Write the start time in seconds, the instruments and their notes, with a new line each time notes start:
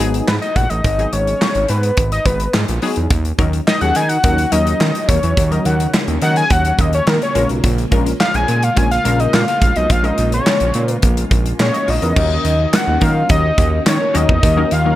0.00 analog synth bass G#1, analog polysynth F#3 B3 D#4 G#4
0.14 closed hi-hat
0.27 analog synth bass G#2, analog synth lead B4, snare, clap
0.42 analog synth lead D#5, closed hi-hat
0.56 analog synth bass A#1, analog synth lead F#5, kick, closed hi-hat
0.70 analog synth bass A1, analog synth lead D#5, closed hi-hat
0.84 analog synth bass G#1, analog polysynth D#4 G#4, kick, closed hi-hat
0.98 analog polysynth F#3 B3 D#4 G#4, closed hi-hat
1.12 analog synth bass G#1, analog synth lead C#5, closed hi-hat
1.27 closed hi-hat
1.42 snare, clap
1.55 analog synth bass G#1, closed hi-hat
1.69 analog synth bass G#2, analog synth lead B4, closed hi-hat
1.83 closed hi-hat
1.97 analog synth bass G#1, kick, closed hi-hat
2.12 analog synth lead D#5, closed hi-hat
2.26 analog synth bass G#1, analog synth lead B4, kick, closed hi-hat
2.40 closed hi-hat
2.54 analog synth bass G#2, snare, clap
2.68 analog synth bass A#1, closed hi-hat
2.82 analog polysynth F#3 B3 D#4 G#4, open hi-hat
2.96 analog synth bass E2, closed hi-hat
3.10 analog synth bass D#2, string machine C#3 F#3 A#3 D#4, kick, closed hi-hat
3.25 closed hi-hat
3.38 analog synth bass D#2, analog polysynth F#3 C#4 D#4 A#4, kick, closed hi-hat
3.53 closed hi-hat
3.67 analog synth lead D#5, snare, clap
3.81 analog synth bass D#2, analog polysynth F#3 C#4 D#4 G#4, analog synth lead F#5, closed hi-hat
3.95 analog synth bass D#3, analog synth lead G#5, closed hi-hat
4.09 analog synth lead F#5, closed hi-hat
4.24 analog synth bass D#2, analog polysynth F#3 C#4 D#4 A#4, kick, closed hi-hat
4.38 closed hi-hat
4.52 analog synth bass D#2, analog polysynth F#3 C#4 D#4 A#4, analog synth lead D#5, closed hi-hat
4.67 closed hi-hat
4.81 analog synth bass D#3, snare, clap
4.95 closed hi-hat
5.08 analog synth bass D#2, analog synth lead C#5, kick, closed hi-hat
5.23 analog synth bass E2, closed hi-hat
5.36 analog synth bass D#2, string machine C#4, analog polysynth D#4 A#4, kick, closed hi-hat
5.51 analog polysynth F#3 C#4 D#4 A#4, analog synth lead D#5, closed hi-hat
5.65 analog synth bass D#2, analog synth lead F#5, closed hi-hat
5.80 closed hi-hat
5.94 snare, clap
6.08 analog synth bass D#2, closed hi-hat
6.22 analog synth bass D#3, analog synth lead F#5, closed hi-hat
6.36 analog synth lead G#5, closed hi-hat
6.50 analog synth bass D#2, analog synth lead F#5, kick, closed hi-hat
6.65 closed hi-hat
6.79 analog synth bass D#2, analog synth lead D#5, kick, closed hi-hat
6.93 analog synth lead C#5, closed hi-hat
7.07 analog synth bass D#3, analog synth lead A#4, snare, clap
7.22 analog synth lead C#5, closed hi-hat
7.35 analog synth bass A#1, analog polysynth G#3 C#4 F4 A#4, string machine G#3 F4, closed hi-hat
7.49 analog synth bass B1, closed hi-hat
7.64 analog synth bass A#1, kick, closed hi-hat
7.78 closed hi-hat
7.91 analog synth bass A#1, analog polysynth G#3 C#4 F4 A#4, kick, closed hi-hat
8.06 closed hi-hat
8.21 analog synth lead F5, snare, clap
8.34 analog synth bass A#1, analog polysynth G#3 C#4 F4 A#4, analog synth lead G#5, closed hi-hat
8.48 analog synth bass A#2, closed hi-hat
8.63 analog synth lead F5, closed hi-hat
8.76 analog synth bass A#1, analog polysynth G#3 C#4 F4 A#4, analog synth lead G#5, kick, closed hi-hat
8.91 analog synth lead F5, closed hi-hat
9.04 analog synth bass A#1, analog polysynth G#3 C#4 F4 A#4, closed hi-hat
9.20 analog synth lead D#5, closed hi-hat
9.34 analog synth bass A#2, analog synth lead F5, snare, clap
9.48 analog synth lead F5, closed hi-hat
9.62 analog synth bass A#1, kick, closed hi-hat
9.76 analog synth bass B1, analog synth lead D#5, closed hi-hat
9.89 analog synth bass A#1, analog polysynth F4 A#4, analog synth lead F5, kick, closed hi-hat
10.03 analog polysynth G#3 C#4 F4 A#4, analog synth lead D#5, closed hi-hat
10.18 analog synth bass A#1, closed hi-hat
10.32 analog synth lead C#5, closed hi-hat
10.47 snare, clap
10.60 analog synth bass A#1, closed hi-hat
10.74 analog synth bass A#2, closed hi-hat
10.88 analog synth lead B4, closed hi-hat
11.02 analog synth bass A#1, kick, closed hi-hat
11.17 closed hi-hat
11.31 analog synth bass A#1, kick, closed hi-hat
11.46 closed hi-hat
11.59 analog synth bass A#2, analog polysynth G#4 F5, analog synth lead C#5, snare, clap
11.73 analog polysynth D#5, closed hi-hat
11.87 analog synth bass A#1, analog polysynth F4 C#5, analog synth lead D#5, open hi-hat
12.02 analog synth bass E2, analog polysynth C#4 A#4, closed hi-hat
12.16 analog synth bass D#2, string machine D#3 A#3 C#4 F#4, analog polysynth F#3 A#3 C#4 D#4 A#4, kick, crash
12.45 analog synth bass D#2, closed hi-hat
12.73 analog synth lead F#5, snare, clap, closed hi-hat
12.88 analog synth bass D#2
13.01 analog synth bass D#3, analog polysynth F#3 A#3 C#4 D#4 A#4, analog synth lead F5, kick, closed hi-hat
13.29 analog synth bass D#2, analog synth lead D#5, kick, closed hi-hat
13.58 analog synth bass D#2, kick, closed hi-hat
13.86 analog synth bass D#3, analog synth lead C#5, snare, clap, closed hi-hat
14.00 analog polysynth D#4 A#4
14.14 analog synth bass D#2, analog polysynth F#3 A#3 C#4 D#4 A#4, analog synth lead D#5, closed hi-hat
14.29 analog synth bass E2, kick
14.43 analog synth bass D#2, string machine D#4, kick, closed hi-hat
14.56 analog polysynth F#3 A#3 C#4 D#4 A#4
14.71 analog synth bass D#2, analog synth lead F5, closed hi-hat
14.85 analog polysynth F#3 A#3 C#4 D#4 A#4